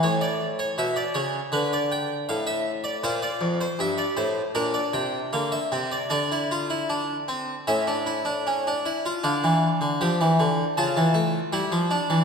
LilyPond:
<<
  \new Staff \with { instrumentName = "Harpsichord" } { \time 4/4 \key d \minor \tempo 4 = 79 << { cis''16 d''8 cis''16 e''16 d''16 cis''8 b'16 d''16 g''8 f''16 e''8 d''16 | c''16 d''8 c''16 e''16 d''16 c''8 bes'16 d''16 g''8 f''16 e''8 d''16 | d''2 e''4. r8 | f''2 a''2 | } \\ { r1 | f'2 d'4 bes8 c'8 | d'16 e'16 f'16 e'16 d'8 c'8 cis'16 d'16 e'16 d'16 cis'16 d'16 e'16 f'16 | d'4 g'4 f'4 e'8 d'8 | } >> }
  \new Staff \with { instrumentName = "Harpsichord" } { \clef bass \time 4/4 \key d \minor a,4 b,8 cis8 d4 a,4 | bes,8 f,8 g,8 a,8 bes,8 c8 d8 c8 | d2 a,4. r8 | d16 e8 d16 f16 e16 d8 cis16 e16 a8 g16 f8 e16 | }
>>